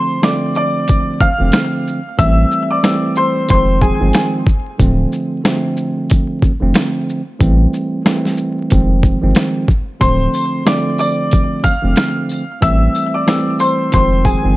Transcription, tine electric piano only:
Already playing: D3 F3 A3 C4
0.22 D3 F3 A3 C4
1.38 D3 F3 A3 C4
2.17 E3 G3 A3 C4
2.83 E3 G3 A3 C4
3.48 D#3 F3 G#3 C4
3.99 D#3 F3 G#3 C4
4.78 D3 F3 A3 C4
5.44 D3 F3 A3 C4
6.60 D3 F3 A3 C4
7.39 E3 G3 A3 C4
8.05 E3 G3 A3 C4
8.70 D#3 F3 G#3 C4
9.21 D#3 F3 G#3 C4
10.00 D3 F3 A3 C4
10.65 D3 F3 A3 C4
11.82 D3 F3 A3 C4
12.61 E3 G3 A3 C4
13.26 E3 G3 A3 C4
13.91 D#3 F3 G#3 C4
14.43 D#3 F3 G#3 C4

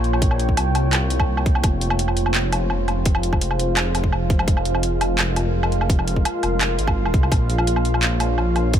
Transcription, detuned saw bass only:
Already playing: A#1
0.57 C2
1.64 F1
2.70 F1
3.41 F1
4.48 F1
5.54 F1
6.43 F1
6.79 G#1
7.14 C2
7.32 A#1
8.38 A#1

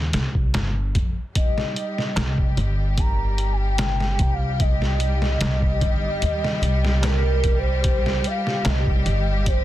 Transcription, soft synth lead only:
1.36 D#5
2.98 A#5
3.53 G5
4.33 F5
4.60 D#5
7.04 A#4
7.58 C5
8.27 F5
8.67 D#5
9.47 C5

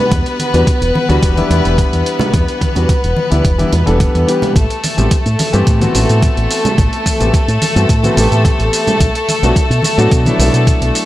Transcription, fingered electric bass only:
0.12 E2
0.54 E2
0.81 E1
1.09 D2
1.23 E1
1.50 E2
1.65 E1
1.93 E2
2.34 E2
2.76 E2
3.04 E1
3.32 D2
3.45 E1
3.73 E2
3.87 E1
4.15 E2
4.56 A1
4.98 A1
5.26 A2
5.53 G2
5.67 A2
5.95 A1
6.09 A2
6.37 A1
6.78 A1
7.20 A1
7.48 A2
7.76 G2
7.89 A2
8.17 A1
8.32 A2
8.59 A1
9.00 B1
9.43 B1
9.70 B2
9.98 A2
10.11 B2
10.39 B1
10.53 B2
10.81 B1

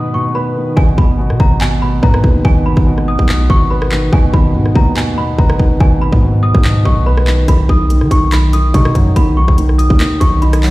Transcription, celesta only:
Already playing: D#6
0.14 C#6
0.35 B5
0.77 G#5
0.98 B5
1.40 A#5
1.61 G#5
1.82 B5
2.03 A#5
2.45 G#5
2.66 B5
3.08 D#6
3.50 C#6
3.70 B5
4.13 G#5
4.33 B5
4.76 A#5
4.97 G#5
5.18 B5
5.38 A#5
5.80 G#5
6.02 B5
6.43 D#6
6.86 C#6
7.06 B5
7.49 B5
7.70 D#6
8.11 C#6
8.32 B5
8.53 D#6
8.74 C#6
9.16 B5
9.37 C#6
9.78 D#6
10.20 C#6
10.42 B5

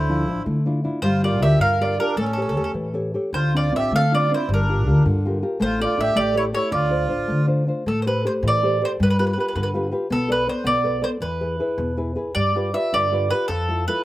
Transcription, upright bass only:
Already playing: D2
0.28 A1
0.46 D3
1.02 G1
1.41 D2
1.60 G2
2.16 A1
2.55 E2
2.74 A2
3.33 D2
3.73 A1
3.91 D3
4.49 G1
4.87 D2
5.05 G2
5.61 A1
5.98 A1
6.16 A1
6.72 D2
7.10 A1
7.30 D3
7.86 A2
8.43 A2
9.00 G2
9.55 G2
10.11 B1
10.65 B1
11.20 E2
11.78 E2
12.36 G2
12.93 G2
13.49 F2

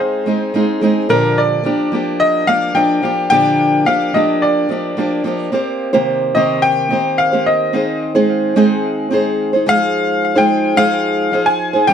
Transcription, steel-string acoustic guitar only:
Already playing: G#3 C4 D#4 G#4
0.26 G#3 C4 D#4 G#4
0.54 G#3 C4 D#4 G#4
0.81 G#3 C4 D#4 G#4
1.09 A#2 D3 F3 A#3 D4 G4
1.64 F3 A#3 D4 G4
1.92 F3 A#3 D4 G4
2.47 F3 A#3 D4 G4
2.74 F3 A#3 D4 G4
3.02 F3 A#3 D4 G4
3.30 A#2 D3 F3 A#3 D4 G4
3.85 F3 A#3 D4 G4
4.13 F3 A#3 D4 G4
4.69 F3 A#3 D4 G4
4.97 F3 A#3 D4 G4
5.24 F3 A#3 D4 G4
5.52 A#3 C4 G4 C5
5.93 C3 D#3 A#3 C4 G4 C5
6.35 C3 D#3 A#3 C4 G4 C5
6.90 A#3 C4 G4 C5
7.32 A#3 C4 G4 C5
7.73 C4 D#4 G#4 C5
8.15 G#3 C4 D#4 G#4 C5
8.56 G#3 C4 D#4 G#4 C5
9.11 C4 D#4 G#4 C5
9.53 D#4 G#4 C5
9.66 F3 G#3 D#4 G#4 C5
10.35 F3 G#3 D#4 G#4 C5
10.76 F3 G#3 D#4 G#4 C5
11.32 F3 D#4 G#4 C5
11.73 D#4 G#4 C5
11.88 G2 F3 G3 A#3 D4 G4

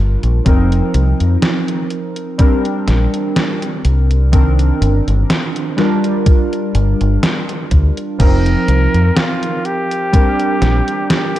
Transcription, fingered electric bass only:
Already playing: G1
0.23 A#1
0.46 F1
0.94 C2
1.20 F2
2.88 A#1
3.85 C2
4.81 G1
5.07 G1
6.75 G1
7.01 G1
7.71 D2
8.20 F1
8.68 C2
8.94 F2
10.62 A#1

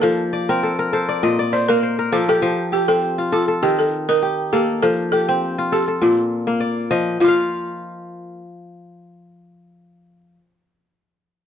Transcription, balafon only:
0.02 A4
1.53 D5
1.69 A#4
2.13 F4
2.29 A4
2.73 G4
2.88 A4
3.33 F4
3.63 G4
3.79 A4
4.09 A#4
4.53 G4
4.82 A4
5.12 A4
5.73 G4
6.03 F4
7.21 F4

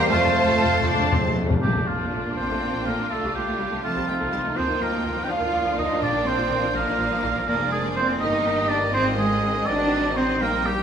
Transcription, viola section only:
0.10 A3 F4
0.85 D4
1.12 C4
1.38 A3
1.64 A#3 D4
1.76 A3
1.88 A#3
2.01 A#3
2.12 A3
2.25 A#3
2.37 A#3
2.50 A3
2.62 A#3
2.74 A#3
2.87 A3
3.00 A#3
3.12 A3
3.25 G3
3.36 A3
3.48 A3
3.60 G3
3.72 A3
3.83 A3 C4
3.96 G3
4.08 A3
4.19 A3
4.32 G3
4.44 A3
4.55 F3 A#3
4.69 D#3
4.80 F3
4.92 F3
5.03 D#3
5.16 F3
5.27 F3
5.40 D#3
5.52 F3
5.64 F3
5.77 D#3
5.90 F3
6.01 F3
6.14 D#3
6.26 F3
6.38 F3
6.49 D#3
6.62 F3
6.74 F3
6.86 D#3
6.98 F3
7.10 F3
7.23 D#3
7.35 F3
7.47 F3 A#3
8.20 D#3
8.94 G#3
9.67 F#3
10.41 G3

